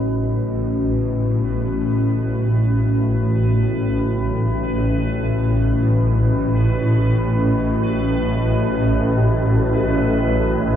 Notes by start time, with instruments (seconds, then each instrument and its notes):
Already playing: synth drone A1 A2, ambient pad A2 C#4 F#4 B4 D#5, synth texture B4